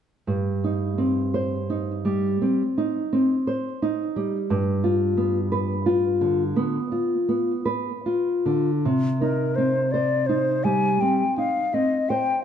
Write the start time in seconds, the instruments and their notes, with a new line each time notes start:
0.27 nylon-string guitar G2
0.64 nylon-string guitar D#4
0.98 nylon-string guitar C4
1.34 nylon-string guitar C5
1.70 nylon-string guitar D#4
2.05 nylon-string guitar G3
2.42 nylon-string guitar C4
2.78 nylon-string guitar D#4
3.13 nylon-string guitar C4
3.47 nylon-string guitar C5
3.82 nylon-string guitar D#4
4.16 nylon-string guitar G3
4.50 nylon-string guitar G2
4.84 nylon-string guitar F4
5.17 nylon-string guitar B3
5.52 nylon-string guitar B4
5.86 nylon-string guitar F4
6.21 nylon-string guitar D3
6.56 nylon-string guitar B3
6.92 nylon-string guitar F4
7.29 nylon-string guitar B3
7.65 nylon-string guitar B4
8.06 nylon-string guitar F4
8.46 nylon-string guitar D3
8.85 nylon-string guitar C3
9.20 nylon-string guitar D#4, flute A#4
9.56 nylon-string guitar C4, flute C5
9.92 nylon-string guitar C5, flute D5
10.27 nylon-string guitar D#4, flute C5
10.64 nylon-string guitar G3, flute G#5
11.01 nylon-string guitar C4, flute G5
11.37 nylon-string guitar D#4, flute F5
11.74 nylon-string guitar C4, flute D#5
12.09 nylon-string guitar C5, flute G5